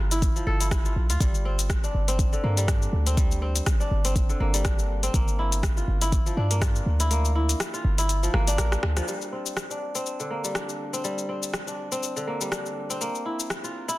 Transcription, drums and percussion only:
0.11 closed hi-hat, cabasa
0.22 kick, closed hi-hat, cabasa
0.36 cabasa
0.61 closed hi-hat, cabasa
0.71 kick, cross-stick, closed hi-hat, cabasa
0.85 cabasa
1.10 closed hi-hat, cabasa
1.20 kick, closed hi-hat, cabasa
1.35 cabasa
1.59 closed hi-hat, cabasa
1.70 kick, cross-stick, closed hi-hat, cabasa
1.84 cabasa
2.08 closed hi-hat, cabasa
2.19 kick, closed hi-hat, cabasa
2.33 cabasa
2.57 closed hi-hat, cabasa
2.68 kick, cross-stick, closed hi-hat, cabasa
2.82 cabasa
3.07 closed hi-hat, cabasa
3.17 kick, closed hi-hat, cabasa
3.31 cabasa
3.56 closed hi-hat, cabasa
3.66 kick, cross-stick, closed hi-hat, cabasa
3.81 cabasa
4.05 closed hi-hat, cabasa
4.16 kick, closed hi-hat, cabasa
4.30 cabasa
4.54 closed hi-hat, cabasa
4.65 kick, cross-stick, closed hi-hat, cabasa
4.79 cabasa
5.03 closed hi-hat, cabasa
5.14 kick, closed hi-hat, cabasa
5.28 cabasa
5.52 closed hi-hat, cabasa
5.63 kick, cross-stick, closed hi-hat, cabasa
5.77 cabasa
6.01 closed hi-hat, cabasa
6.12 kick, closed hi-hat, cabasa
6.26 cabasa
6.51 closed hi-hat, cabasa
6.62 kick, cross-stick, closed hi-hat, cabasa
6.76 cabasa
7.00 closed hi-hat, cabasa
7.11 closed hi-hat, cabasa
7.25 cabasa
7.49 closed hi-hat, cabasa
7.60 cross-stick, closed hi-hat, cabasa
7.74 cabasa
7.98 closed hi-hat, cabasa
8.09 closed hi-hat, cabasa
8.23 cabasa
8.34 cross-stick
8.48 closed hi-hat, cabasa
8.58 cross-stick, closed hi-hat, cabasa
8.72 cross-stick, cabasa
8.83 cross-stick
8.97 cross-stick, closed hi-hat, cabasa
9.08 cabasa
9.22 cabasa
9.46 cabasa
9.57 cross-stick, cabasa
9.71 cabasa
9.95 cabasa
10.06 cabasa
10.20 cabasa
10.45 cabasa
10.55 cross-stick, cabasa
10.69 cabasa
10.94 cabasa
11.04 cabasa
11.18 cabasa
11.43 cabasa
11.54 cross-stick, cabasa
11.68 cabasa
11.92 cabasa
12.03 cabasa
12.17 cabasa
12.41 cabasa
12.52 cross-stick, cabasa
12.66 cabasa
12.90 cabasa
13.01 cabasa
13.15 cabasa
13.40 cabasa
13.50 cross-stick, cabasa
13.64 cabasa
13.89 cabasa

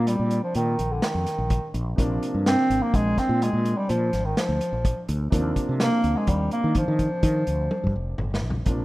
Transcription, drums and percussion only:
0.07 closed hi-hat
0.31 closed hi-hat
0.55 closed hi-hat
0.79 closed hi-hat
1.02 snare, closed hi-hat
1.26 snare, closed hi-hat
1.50 kick, closed hi-hat
1.74 closed hi-hat
1.98 kick, closed hi-hat
2.23 closed hi-hat
2.46 snare, closed hi-hat
2.71 closed hi-hat
2.94 kick, closed hi-hat
3.18 kick, snare, closed hi-hat
3.42 closed hi-hat
3.65 closed hi-hat
3.89 closed hi-hat
4.13 snare, closed hi-hat
4.37 snare, closed hi-hat
4.61 closed hi-hat
4.85 kick, closed hi-hat
5.09 closed hi-hat
5.32 kick, closed hi-hat
5.56 kick, closed hi-hat
5.80 snare, closed hi-hat
6.04 closed hi-hat
6.27 kick, closed hi-hat
6.51 closed hi-hat
6.75 kick, closed hi-hat
6.99 kick, closed hi-hat
7.23 kick, closed hi-hat
7.47 closed hi-hat
7.71 high tom
7.87 kick
8.18 mid tom
8.34 snare
8.50 floor tom
8.66 kick, closed hi-hat

